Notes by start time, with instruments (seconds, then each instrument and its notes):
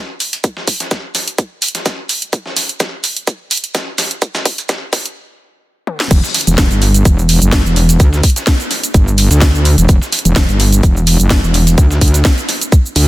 0.20 open hi-hat, shaker
0.33 closed hi-hat
0.44 kick, closed hi-hat, shaker
0.57 snare
0.68 kick, open hi-hat, shaker
0.80 snare, closed hi-hat
0.91 kick, snare, closed hi-hat, shaker
1.15 snare, open hi-hat, shaker
1.28 closed hi-hat
1.38 kick, closed hi-hat, shaker
1.62 open hi-hat, shaker
1.68 closed hi-hat
1.75 snare, closed hi-hat
1.86 kick, snare, closed hi-hat, shaker
2.09 open hi-hat, shaker
2.22 closed hi-hat
2.33 kick, closed hi-hat, shaker
2.46 snare
2.56 snare, open hi-hat, shaker
2.69 closed hi-hat
2.80 kick, snare, closed hi-hat, shaker
3.04 open hi-hat, shaker
3.17 closed hi-hat
3.27 kick, closed hi-hat, shaker
3.51 open hi-hat, shaker
3.57 closed hi-hat
3.64 closed hi-hat
3.75 kick, snare, closed hi-hat, shaker
3.98 snare, open hi-hat, shaker
4.11 closed hi-hat
4.22 kick, closed hi-hat, shaker
4.35 snare, shaker
4.45 kick, open hi-hat
4.58 closed hi-hat, shaker
4.69 kick, snare, closed hi-hat, shaker
4.93 kick, snare, open hi-hat, shaker
5.06 closed hi-hat
5.87 high tom
6.00 snare
6.11 wobble bass E1, kick, closed hi-hat, crash, shaker
6.24 snare, shaker
6.34 snare, open hi-hat, shaker
6.41 closed hi-hat
6.47 wobble bass E1, closed hi-hat, shaker
6.58 wobble bass E1, kick, snare, closed hi-hat, shaker
6.71 wobble bass G1, closed hi-hat, shaker
6.82 open hi-hat, shaker
6.94 closed hi-hat, shaker
7.05 wobble bass E1, kick, closed hi-hat, shaker
7.19 shaker
7.29 open hi-hat, shaker
7.42 wobble bass F#1, closed hi-hat, shaker
7.52 kick, snare, closed hi-hat, shaker
7.65 wobble bass E1, shaker
7.76 open hi-hat, shaker
7.89 closed hi-hat, shaker
8.00 wobble bass D2, kick, closed hi-hat, shaker
8.13 snare, shaker
8.23 kick, open hi-hat, shaker
8.30 closed hi-hat
8.36 snare, closed hi-hat, shaker
8.47 kick, snare, closed hi-hat, shaker
8.60 closed hi-hat, shaker
8.71 snare, open hi-hat, shaker
8.83 closed hi-hat, shaker
8.94 wobble bass G1, kick, closed hi-hat, shaker
9.08 shaker
9.18 open hi-hat, shaker
9.31 wobble bass D2, snare, closed hi-hat, shaker
9.41 kick, snare, closed hi-hat, shaker
9.55 shaker
9.65 open hi-hat, shaker
9.78 wobble bass E1, closed hi-hat, shaker
9.89 wobble bass E1, kick, closed hi-hat, shaker
10.02 snare, shaker
10.12 snare, open hi-hat, shaker
10.19 closed hi-hat
10.25 wobble bass E1, closed hi-hat, shaker
10.36 wobble bass E1, kick, snare, closed hi-hat, shaker
10.49 wobble bass G1, closed hi-hat, shaker
10.60 open hi-hat, shaker
10.72 closed hi-hat, shaker
10.83 wobble bass E1, kick, closed hi-hat, shaker
10.97 shaker
11.07 open hi-hat, shaker
11.20 wobble bass F#1, closed hi-hat, shaker
11.30 kick, snare, closed hi-hat, shaker
11.43 wobble bass E1, shaker
11.54 open hi-hat, shaker
11.67 closed hi-hat, shaker
11.78 wobble bass D2, kick, closed hi-hat, shaker
11.91 snare, shaker
12.01 wobble bass D2, kick, open hi-hat, shaker
12.08 closed hi-hat
12.14 snare, closed hi-hat, shaker
12.25 kick, snare, closed hi-hat, shaker
12.38 closed hi-hat, shaker
12.49 snare, open hi-hat, shaker
12.61 closed hi-hat, shaker
12.72 kick, closed hi-hat, shaker
12.86 shaker
12.96 wobble bass D2, open hi-hat, shaker